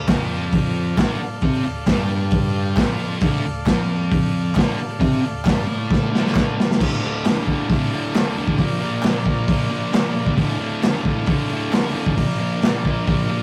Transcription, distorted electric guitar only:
0.08 0.97 F2 medium
0.08 0.98 F3 loud
0.97 1.18 D2 medium
0.97 1.20 D3 medium
1.19 muted distorted electric guitar stroke medium
1.42 1.64 C3 loud
1.42 1.64 C4 loud
1.64 1.83 D2 medium
1.87 2.76 G2 medium
1.87 2.77 G3 loud
2.77 3.21 F2 medium
2.77 3.22 F3 medium
3.22 3.44 D2 medium
3.22 3.44 D3 loud
3.46 3.63 D2 medium
3.68 4.55 F2 loud
3.68 4.55 F3 loud
4.55 4.76 D2 medium
4.55 4.77 D3 loud
4.77 muted distorted electric guitar stroke medium
4.99 5.22 C3 loud
4.99 5.22 C4 loud
5.22 5.41 D2 medium
5.44 5.66 G2 loud
5.44 5.67 G3 loud
5.66 6.11 A2 medium
5.66 6.11 A3 loud
6.12 6.56 D2 loud
6.12 6.56 D3 loud
6.57 6.79 G2 medium
6.57 6.79 G3 loud
6.79 7.02 D2 medium
6.79 7.02 A2 loud
6.79 7.04 D3 loud
7.02 7.24 D2 medium
7.02 7.24 A2 medium
7.02 7.26 D3 medium
7.25 7.48 D2 medium
7.25 7.47 A2 loud
7.25 7.49 D3 loud
7.48 7.69 D2 medium
7.48 7.69 A2 medium
7.48 7.71 D3 medium
7.69 7.91 D2 medium
7.69 7.92 A2 loud
7.69 7.93 D3 loud
7.92 8.15 D2 medium
7.92 8.15 A2 medium
7.92 8.17 D3 loud
8.16 8.36 D2 medium
8.16 8.36 A2 medium
8.16 8.38 D3 loud
8.36 8.58 D2 medium
8.36 8.58 A2 medium
8.36 8.60 D3 medium
8.58 8.79 A#2 medium
8.58 8.81 F3 loud
8.58 8.81 A#3 loud
8.80 9.01 A#2 medium
8.80 9.03 F3 medium
8.80 9.03 A#3 medium
9.03 9.24 A#2 medium
9.03 9.26 F3 medium
9.03 9.27 A#3 loud
9.25 9.47 A#2 medium
9.25 9.49 F3 medium
9.25 9.50 A#3 medium
9.48 9.68 A#2 medium
9.48 9.69 F3 medium
9.48 9.70 A#3 loud
9.69 9.91 A#2 loud
9.69 9.93 F3 medium
9.69 9.92 A#3 loud
9.92 10.12 A#2 medium
9.92 10.14 F3 loud
9.92 10.15 A#3 loud
10.13 10.35 A#2 medium
10.13 10.37 F3 medium
10.13 10.37 A#3 loud
10.36 10.58 D2 medium
10.36 10.59 A2 loud
10.36 10.60 D3 loud
10.58 10.81 D2 medium
10.58 10.80 A2 medium
10.58 10.83 D3 medium
10.81 11.02 D2 loud
10.81 11.02 A2 loud
10.81 11.03 D3 loud
11.02 11.27 D2 medium
11.02 11.27 A2 medium
11.02 11.28 D3 loud
11.27 11.50 D2 medium
11.27 11.50 A2 medium
11.27 11.52 D3 loud
11.50 11.71 D2 medium
11.50 11.71 A2 loud
11.50 11.72 D3 loud
11.71 11.91 D2 medium
11.71 11.92 A2 loud
11.71 11.94 D3 medium
11.92 12.14 D2 medium
11.92 12.15 A2 medium
11.92 12.16 D3 medium
12.15 12.36 A#2 loud
12.15 12.38 F3 loud
12.15 12.39 A#3 loud
12.38 12.59 A#2 medium
12.38 12.61 F3 medium
12.38 12.62 A#3 loud
12.60 12.82 A#2 loud
12.60 12.83 F3 loud
12.60 12.85 A#3 loud
12.84 13.06 A#2 medium
12.84 13.08 F3 medium
12.84 13.07 A#3 medium
13.07 13.29 A#2 medium
13.07 13.30 F3 loud
13.07 13.30 A#3 loud
13.30 13.43 A#2 medium
13.30 13.43 F3 loud
13.30 13.43 A#3 loud

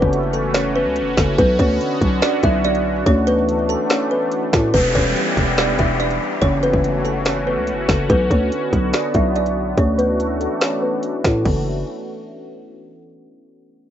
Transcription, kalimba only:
0.00 0.31 B3 medium
0.00 0.31 B4 medium
0.33 0.53 A4 medium
0.33 0.54 A5 medium
0.55 0.75 C#4 medium
0.55 0.74 C#5 medium
0.76 1.15 B3 medium
0.76 1.15 B4 medium
1.17 1.37 A4 medium
1.17 1.37 A5 medium
1.38 1.59 B3 medium
1.38 1.58 B4 loud
1.59 2.19 C#4 medium
1.59 2.18 C#5 medium
2.22 2.42 D4 medium
2.22 2.42 D5 medium
2.44 2.64 E4 medium
2.44 2.63 E5 medium
2.65 2.85 D4 medium
2.65 2.84 D5 medium
3.06 3.27 C#4 medium
3.06 3.26 C#5 loud
3.27 3.67 B3 medium
3.27 3.67 B4 loud
3.69 3.89 A4 medium
3.69 3.89 A5 medium
3.90 4.10 C#4 medium
3.90 4.10 C#5 medium
4.11 4.51 B3 medium
4.11 4.50 B4 medium
4.53 4.73 A4 medium
4.53 4.73 A5 medium
4.74 4.94 B3 medium
4.74 4.94 B4 loud
4.95 5.55 C#4 medium
4.95 5.54 C#5 medium
5.58 5.78 D4 medium
5.58 5.78 D5 medium
5.79 5.99 E4 medium
5.79 5.99 E5 medium
6.00 6.20 D4 medium
6.00 6.20 D5 medium
6.42 6.62 C#4 medium
6.42 6.61 C#5 loud
6.63 7.03 B3 medium
6.63 7.02 B4 medium
7.05 7.24 A4 medium
7.05 7.25 A5 medium
7.26 7.46 C#4 medium
7.26 7.46 C#5 medium
7.47 7.87 B3 medium
7.47 7.86 B4 medium
7.89 8.08 A4 medium
7.89 8.09 A5 medium
8.10 8.30 B3 medium
8.10 8.29 B4 loud
8.30 8.90 C#4 medium
8.30 8.90 C#5 medium
8.94 9.14 D4 medium
8.94 9.13 D5 medium
9.15 9.35 E4 medium
9.15 9.35 E5 medium
9.36 9.56 D4 medium
9.36 9.56 D5 medium
9.78 9.98 C#4 medium
9.78 9.97 C#5 loud
9.98 10.38 B3 medium
9.98 10.38 B4 loud
10.40 10.60 A4 medium
10.40 10.61 A5 medium
10.62 10.82 C#4 medium
10.62 10.81 C#5 medium
10.82 11.22 B3 medium
10.82 11.22 B4 medium
11.24 11.44 A4 medium
11.24 11.44 A5 medium
11.46 11.65 A5 medium

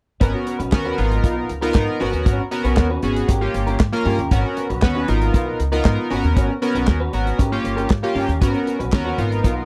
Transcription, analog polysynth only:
0.21 0.57 B3 medium
0.21 0.57 C#4 medium
0.21 0.57 F#4 medium
0.21 0.57 A#4 medium
0.72 0.96 B3 loud
0.72 0.98 C#4 medium
0.72 0.98 F#4 medium
0.72 0.98 A#4 loud
0.98 1.49 B3 medium
0.98 1.49 D#4 medium
0.98 1.49 F4 medium
0.98 1.04 G#4 medium
1.04 1.53 A#4 medium
1.62 1.98 B3 loud
1.62 1.98 D#4 loud
1.62 1.98 F4 medium
1.62 1.98 A#4 loud
2.00 2.41 B3 medium
2.00 2.42 C#4 medium
2.00 2.42 F#4 medium
2.00 2.42 A#4 medium
2.51 2.87 B3 loud
2.51 2.87 C#4 medium
2.51 2.88 F#4 medium
2.51 2.88 A#4 medium
3.03 3.29 B3 medium
3.03 3.29 C#4 medium
3.03 3.29 F#4 medium
3.03 3.29 G#4 medium
3.41 3.77 A#3 medium
3.41 3.77 C#4 medium
3.41 3.77 F4 medium
3.41 3.77 G4 medium
3.92 4.19 A#3 loud
3.92 4.20 C#4 medium
3.92 4.20 F4 medium
3.92 4.20 A#4 loud
4.31 4.67 B3 medium
4.31 4.67 C#4 medium
4.31 4.67 F#4 medium
4.31 4.67 A#4 medium
4.82 5.07 B3 loud
4.82 5.08 C#4 medium
4.82 5.08 F#4 medium
4.82 5.08 B4 medium
5.08 5.59 B3 medium
5.08 5.59 D#4 medium
5.08 5.60 F4 medium
5.08 5.60 A#4 medium
5.72 6.08 B3 medium
5.72 6.08 D#4 medium
5.72 6.08 F4 medium
5.72 6.08 A#4 loud
6.10 6.52 B3 medium
6.10 6.52 C#4 medium
6.10 6.52 F#4 medium
6.10 6.52 A#4 loud
6.62 6.98 B3 loud
6.62 6.98 C#4 medium
6.62 6.98 F#4 medium
6.62 6.98 A#4 loud
7.13 7.39 B3 medium
7.13 7.39 C#4 medium
7.13 7.39 F#4 medium
7.13 7.39 A#4 medium
7.52 7.88 A#3 medium
7.52 7.88 C#4 medium
7.52 7.88 F4 medium
7.52 7.88 G4 loud
8.03 8.30 A#3 loud
8.03 8.30 C#4 medium
8.03 8.30 F4 medium
8.03 8.30 G4 loud
8.41 8.77 B3 medium
8.41 8.77 C#4 medium
8.41 8.77 F#4 medium
8.41 8.78 A#4 medium
8.93 9.17 B3 medium
8.93 9.19 C#4 medium
8.93 9.19 F#4 medium
8.93 9.18 A#4 loud
9.18 9.65 B3 medium
9.18 9.65 D#4 medium
9.18 9.65 F4 medium
9.18 9.65 A#4 medium

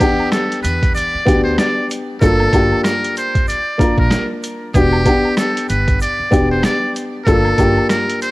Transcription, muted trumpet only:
0.00 0.28 G4 loud
0.31 0.60 A4 medium
0.63 0.92 B4 medium
0.95 1.42 D5 loud
1.43 1.56 C5 medium
1.59 1.87 D5 loud
2.21 2.81 A4 loud
2.84 3.13 A#4 medium
3.18 3.45 C5 medium
3.48 3.95 D5 loud
3.99 4.27 A#4 medium
4.75 5.34 G4 loud
5.37 5.66 A4 medium
5.69 5.98 B4 medium
6.02 6.48 D5 medium
6.51 6.63 C5 medium
6.65 6.93 D5 medium
7.25 7.85 A4 loud
7.90 8.18 A#4 medium
8.22 8.31 C5 medium

